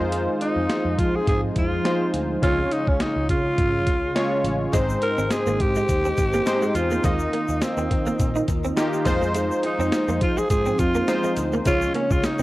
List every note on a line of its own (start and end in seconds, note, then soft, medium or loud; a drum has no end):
0.00 0.26 F2 medium
0.00 2.40 F3 medium
0.00 0.75 G#3 medium
0.00 2.40 C4 medium
0.00 0.76 D#4 medium
0.00 2.40 D#4 medium
0.00 0.76 F4 medium
0.00 4.70 G#4 medium
0.00 0.76 C5 medium
0.12 closed hi-hat medium
0.41 1.01 D#4 medium
0.41 closed hi-hat medium
0.56 0.66 F2 medium
0.70 snare loud
0.70 closed hi-hat medium
0.85 0.95 F2 medium
0.99 1.20 F3 medium
0.99 1.17 F4 medium
0.99 kick medium
0.99 closed hi-hat medium
1.16 1.28 G#4 medium
1.27 1.49 G#2 medium
1.27 1.41 G#4 medium
1.27 kick medium
1.27 closed hi-hat medium
1.56 1.78 F2 medium
1.56 2.11 F4 medium
1.56 kick medium
1.56 closed hi-hat medium
1.84 2.26 G#3 medium
1.84 2.26 D#4 medium
1.84 2.26 F4 medium
1.84 2.26 C5 medium
1.84 snare medium
1.84 closed hi-hat medium
2.14 2.36 D2 medium
2.14 closed hi-hat medium
2.42 2.64 C#2 loud
2.42 4.71 C#3 medium
2.42 3.25 C#3 medium
2.42 3.23 G#3 medium
2.42 4.71 C#4 medium
2.42 3.23 C#4 medium
2.42 4.71 F4 medium
2.42 3.23 F4 medium
2.42 2.74 F4 loud
2.42 3.23 C#5 medium
2.42 kick medium
2.42 closed hi-hat loud
2.71 2.90 D#4 medium
2.71 closed hi-hat medium
2.87 2.97 C#2 medium
2.87 3.03 C#4 medium
2.87 kick medium
3.00 3.30 D#4 medium
3.00 snare loud
3.00 closed hi-hat medium
3.16 3.26 C#2 medium
3.29 3.51 C#3 medium
3.29 4.41 F4 medium
3.29 kick medium
3.29 closed hi-hat medium
3.58 3.87 G#2 medium
3.58 kick medium
3.58 closed hi-hat medium
3.87 4.08 C#2 medium
3.87 kick medium
3.87 closed hi-hat medium
4.15 4.57 G#3 medium
4.15 4.57 C#4 medium
4.15 4.57 F4 medium
4.15 4.57 C#5 medium
4.15 snare medium
4.15 closed hi-hat medium
4.44 4.66 A1 medium
4.44 closed hi-hat medium
4.73 4.95 G#1 medium
4.73 5.56 G#2 medium
4.73 5.54 G#3 medium
4.73 7.02 G#3 medium
4.73 4.85 G#3 medium
4.73 5.54 C4 medium
4.73 7.02 C4 medium
4.73 11.61 D#4 medium
4.73 5.54 D#4 medium
4.73 5.54 C5 medium
4.73 kick loud
4.73 closed hi-hat medium
4.73 shaker medium
4.89 shaker soft
5.02 5.33 A#4 medium
5.02 muted clean electric guitar stroke soft
5.02 closed hi-hat medium
5.18 5.28 G#1 medium
5.18 5.28 C4 medium
5.18 shaker soft
5.31 5.62 G#4 medium
5.31 snare loud
5.31 closed hi-hat medium
5.31 shaker medium
5.47 5.57 G#1 medium
5.47 5.57 A#3 medium
5.47 shaker soft
5.60 5.82 G#2 medium
5.60 6.77 G4 medium
5.60 muted clean electric guitar stroke soft
5.60 kick medium
5.60 closed hi-hat medium
5.75 5.86 G#3 medium
5.75 shaker soft
5.89 6.10 D#2 medium
5.89 kick medium
5.89 closed hi-hat medium
5.89 shaker medium
6.05 6.15 C4 medium
6.05 shaker soft
6.17 6.39 G#1 medium
6.17 muted clean electric guitar stroke soft
6.17 kick medium
6.17 closed hi-hat medium
6.17 shaker soft
6.33 6.44 A#3 medium
6.33 shaker soft
6.46 6.87 G#3 medium
6.46 6.87 C4 medium
6.46 6.88 D#4 medium
6.46 6.88 C5 medium
6.46 snare medium
6.46 closed hi-hat medium
6.46 shaker medium
6.62 6.72 G#3 medium
6.62 shaker soft
6.75 6.97 E2 medium
6.75 7.06 F4 medium
6.75 muted clean electric guitar stroke soft
6.75 closed hi-hat medium
6.75 shaker soft
6.91 7.01 A#3 medium
6.91 shaker soft
7.04 7.26 D#2 medium
7.04 9.04 D#3 medium
7.04 7.87 D#3 medium
7.04 7.16 G#3 medium
7.04 7.84 A#3 medium
7.04 7.85 D#4 medium
7.04 7.64 D#4 medium
7.04 9.04 F4 medium
7.04 7.85 F4 medium
7.04 9.04 A#4 medium
7.04 7.85 D#5 medium
7.04 kick loud
7.04 closed hi-hat medium
7.04 shaker medium
7.19 shaker soft
7.33 7.45 A#3 medium
7.33 closed hi-hat medium
7.48 7.59 D#2 medium
7.48 muted clean electric guitar stroke soft
7.48 shaker soft
7.62 8.49 C4 medium
7.62 snare loud
7.62 closed hi-hat medium
7.62 shaker medium
7.77 7.87 D#2 medium
7.77 7.88 C4 medium
7.77 shaker soft
7.91 8.12 D#3 medium
7.91 muted clean electric guitar stroke soft
7.91 kick medium
7.91 closed hi-hat medium
8.06 8.16 A#3 medium
8.06 shaker soft
8.19 8.41 A#2 medium
8.19 kick medium
8.19 closed hi-hat medium
8.19 shaker medium
8.35 8.45 D#4 medium
8.35 shaker soft
8.48 8.70 D#2 medium
8.48 muted clean electric guitar stroke soft
8.48 kick medium
8.48 closed hi-hat medium
8.48 shaker soft
8.64 8.74 C4 medium
8.64 shaker soft
8.76 9.06 A#3 medium
8.76 9.04 D#4 medium
8.76 9.04 F4 medium
8.76 9.06 G4 medium
8.76 muted clean electric guitar stroke soft
8.76 snare loud
8.76 closed hi-hat medium
8.76 shaker medium
8.93 shaker soft
9.05 9.49 F2 medium
9.05 11.63 F3 medium
9.05 9.98 G#3 medium
9.05 9.18 A#3 medium
9.05 11.63 C4 medium
9.05 9.98 D#4 medium
9.05 9.99 F4 medium
9.05 12.43 G#4 medium
9.05 9.99 C5 loud
9.05 kick loud
9.05 closed hi-hat medium
9.05 shaker medium
9.21 9.32 G#3 medium
9.21 shaker soft
9.34 9.47 G#3 medium
9.34 closed hi-hat loud
9.34 shaker medium
9.51 shaker soft
9.63 10.19 D#4 medium
9.63 muted clean electric guitar stroke soft
9.63 closed hi-hat medium
9.79 9.89 F2 medium
9.79 9.90 C4 medium
9.79 shaker soft
9.92 snare loud
9.92 closed hi-hat medium
9.92 shaker medium
10.08 10.18 F2 medium
10.08 10.18 A#3 medium
10.08 shaker soft
10.21 10.43 F3 medium
10.21 10.40 F4 medium
10.21 muted clean electric guitar stroke soft
10.21 kick medium
10.21 closed hi-hat medium
10.37 10.47 G#3 medium
10.37 10.50 G#4 medium
10.37 shaker soft
10.50 10.72 G#2 medium
10.50 10.81 G#4 loud
10.50 kick medium
10.50 closed hi-hat medium
10.50 shaker medium
10.66 10.76 C4 medium
10.66 shaker soft
10.79 11.01 F2 medium
10.79 11.37 F4 medium
10.79 muted clean electric guitar stroke soft
10.79 kick medium
10.79 closed hi-hat medium
10.79 shaker soft
10.95 11.05 A#3 medium
10.95 shaker soft
11.08 11.49 G#3 medium
11.08 11.49 D#4 medium
11.08 11.49 F4 medium
11.08 11.50 C5 medium
11.08 snare medium
11.08 closed hi-hat medium
11.08 shaker medium
11.24 11.34 G#3 medium
11.24 shaker soft
11.37 11.59 D2 medium
11.37 muted clean electric guitar stroke soft
11.37 closed hi-hat medium
11.37 shaker medium
11.52 11.63 A#3 medium
11.52 shaker soft
11.64 11.88 C#2 medium
11.64 12.43 C#3 medium
11.64 12.43 G#3 medium
11.64 11.78 G#3 medium
11.64 12.43 C#4 medium
11.64 12.43 F4 medium
11.64 11.93 F4 loud
11.64 12.43 C#5 medium
11.64 kick loud
11.64 closed hi-hat medium
11.64 shaker medium
11.81 shaker soft
11.94 12.07 A#3 medium
11.94 12.13 C#4 medium
11.94 closed hi-hat medium
12.11 12.20 C#2 medium
12.11 12.27 F4 medium
12.11 muted clean electric guitar stroke soft
12.11 kick medium
12.11 shaker soft
12.23 12.43 D#4 medium
12.23 snare loud
12.23 closed hi-hat medium
12.23 shaker medium
12.39 12.43 C#2 medium
12.39 12.43 C4 medium
12.39 shaker soft